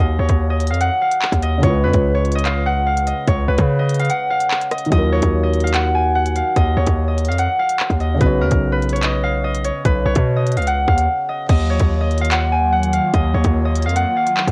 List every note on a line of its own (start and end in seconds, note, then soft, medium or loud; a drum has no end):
0.00 0.18 D#2 loud
0.00 1.56 D#3 medium
0.00 1.58 F#3 medium
0.00 1.60 F4 medium
0.00 1.62 A#4 medium
0.00 0.19 C#5 medium
0.00 0.50 D#5 medium
0.00 0.70 F5 medium
0.00 0.87 G#5 medium
0.19 0.29 D#2 loud
0.19 1.63 C#5 medium
0.29 0.72 D#2 loud
0.29 kick medium
0.29 closed hi-hat medium
0.50 1.42 D#5 medium
0.60 closed hi-hat medium
0.67 0.90 F2 loud
0.67 0.87 F5 medium
0.67 closed hi-hat medium
0.74 closed hi-hat soft
0.81 1.08 F#5 medium
0.81 closed hi-hat medium
1.02 2.45 F5 medium
1.12 closed hi-hat medium
1.22 clap loud
1.32 1.62 D#2 loud
1.32 kick medium
1.32 closed hi-hat medium
1.43 2.35 D#5 medium
1.43 closed hi-hat medium
1.58 4.85 C#3 medium
1.58 4.87 G#3 medium
1.63 1.85 C#2 loud
1.63 4.89 F4 medium
1.63 2.14 C#5 loud
1.63 kick loud
1.63 closed hi-hat medium
1.70 4.91 B4 medium
1.84 1.93 F2 loud
1.84 3.48 B4 medium
1.93 3.13 C#2 loud
1.93 kick loud
1.93 closed hi-hat medium
2.15 3.27 C#5 medium
2.25 closed hi-hat soft
2.32 3.07 D#5 medium
2.32 closed hi-hat medium
2.38 closed hi-hat medium
2.45 2.72 F5 medium
2.45 clap loud
2.45 closed hi-hat medium
2.66 2.93 F#5 medium
2.87 3.99 F5 medium
2.97 closed hi-hat medium
3.07 3.79 D#5 medium
3.07 closed hi-hat medium
3.27 3.47 C#2 loud
3.27 5.12 C#5 medium
3.27 kick loud
3.27 closed hi-hat medium
3.48 3.58 C#2 loud
3.48 5.53 B4 medium
3.58 4.10 C#3 loud
3.58 kick medium
3.58 closed hi-hat medium
3.79 4.71 D#5 medium
3.89 closed hi-hat medium
3.94 closed hi-hat medium
3.99 4.16 F5 medium
3.99 closed hi-hat medium
4.05 closed hi-hat soft
4.10 4.36 F#5 medium
4.10 closed hi-hat medium
4.30 5.63 F5 medium
4.40 closed hi-hat medium
4.51 clap loud
4.61 closed hi-hat medium
4.71 4.91 D#5 medium
4.71 cross-stick loud
4.71 closed hi-hat medium
4.78 closed hi-hat medium
4.85 8.14 D#3 medium
4.85 closed hi-hat soft
4.90 5.22 D#2 loud
4.90 8.16 F#3 medium
4.90 8.18 F4 medium
4.90 5.43 D#5 loud
4.90 kick loud
4.90 closed hi-hat medium
4.98 8.20 A#4 medium
5.12 6.77 C#5 medium
5.22 6.42 D#2 loud
5.22 kick loud
5.22 closed hi-hat medium
5.43 6.56 D#5 medium
5.54 closed hi-hat soft
5.60 5.80 F5 medium
5.60 closed hi-hat medium
5.67 closed hi-hat medium
5.74 6.15 F#5 medium
5.74 clap loud
5.74 closed hi-hat medium
5.95 7.45 G#5 medium
6.15 6.42 F#5 medium
6.26 closed hi-hat medium
6.36 7.28 F5 medium
6.36 closed hi-hat medium
6.56 6.76 D#2 loud
6.56 7.07 D#5 medium
6.56 kick loud
6.56 closed hi-hat medium
6.77 6.87 D#2 loud
6.77 8.68 C#5 medium
6.87 7.30 D#2 loud
6.87 kick medium
6.87 closed hi-hat medium
7.08 8.00 D#5 medium
7.18 closed hi-hat medium
7.25 7.48 F2 loud
7.25 7.45 F5 medium
7.25 closed hi-hat medium
7.32 closed hi-hat soft
7.38 7.65 F#5 medium
7.38 closed hi-hat medium
7.59 9.23 F5 medium
7.69 closed hi-hat medium
7.80 clap loud
7.90 8.19 D#2 loud
7.90 kick medium
7.90 closed hi-hat medium
8.00 9.02 D#5 medium
8.00 closed hi-hat medium
8.14 11.42 C#3 medium
8.14 11.44 B3 medium
8.21 8.43 B1 loud
8.21 11.46 F#4 medium
8.21 8.47 B4 medium
8.21 kick loud
8.21 closed hi-hat medium
8.26 11.48 C#5 medium
8.41 8.51 D#2 medium
8.41 8.78 A#4 medium
8.51 9.71 B1 loud
8.51 kick medium
8.51 closed hi-hat medium
8.72 9.85 B4 medium
8.82 closed hi-hat soft
8.89 9.64 C#5 medium
8.89 closed hi-hat medium
8.96 closed hi-hat medium
9.03 9.44 D#5 medium
9.03 clap loud
9.03 closed hi-hat medium
9.23 10.57 F5 medium
9.44 10.36 D#5 medium
9.55 closed hi-hat medium
9.64 10.05 C#5 medium
9.64 closed hi-hat medium
9.85 10.05 B1 loud
9.85 11.90 B4 medium
9.85 kick loud
9.85 closed hi-hat medium
10.06 10.15 B1 loud
10.06 11.70 C#5 medium
10.15 10.58 B2 loud
10.15 kick medium
10.15 closed hi-hat medium
10.36 11.28 D#5 medium
10.47 closed hi-hat medium
10.52 closed hi-hat medium
10.57 10.86 C#2 loud
10.57 10.73 F5 medium
10.57 closed hi-hat medium
10.62 closed hi-hat soft
10.67 10.94 F#5 medium
10.67 closed hi-hat medium
10.88 11.08 D#2 loud
10.88 12.21 F5 medium
10.88 kick loud
10.98 closed hi-hat medium
11.29 11.49 D#5 medium
11.49 11.79 D#2 loud
11.49 14.52 D#3 medium
11.49 14.52 F#3 medium
11.49 14.52 A#3 medium
11.49 14.52 F4 medium
11.49 12.00 D#5 loud
11.49 kick loud
11.49 closed hi-hat medium
11.49 crash loud
11.70 13.34 C#5 medium
11.80 13.00 D#2 loud
11.80 kick loud
11.80 closed hi-hat medium
12.01 13.13 D#5 medium
12.11 closed hi-hat soft
12.18 12.38 F5 medium
12.18 closed hi-hat medium
12.25 closed hi-hat medium
12.32 12.72 F#5 medium
12.32 clap loud
12.32 closed hi-hat medium
12.52 14.02 G#5 medium
12.73 12.99 F#5 medium
12.83 closed hi-hat medium
12.93 13.85 F5 medium
12.93 closed hi-hat medium
13.14 13.34 D#2 loud
13.14 13.65 D#5 medium
13.14 kick loud
13.14 closed hi-hat medium
13.34 13.44 D#2 loud
13.34 14.52 C#5 medium
13.44 13.87 D#2 loud
13.44 kick loud
13.44 closed hi-hat medium
13.65 14.52 D#5 medium
13.76 closed hi-hat medium
13.82 14.05 F2 loud
13.82 14.02 F5 medium
13.82 closed hi-hat medium
13.89 closed hi-hat soft
13.96 14.23 F#5 medium
13.96 closed hi-hat medium
14.17 14.52 F5 medium
14.27 closed hi-hat medium
14.37 clap loud
14.47 14.52 D#2 loud
14.47 kick medium
14.47 closed hi-hat medium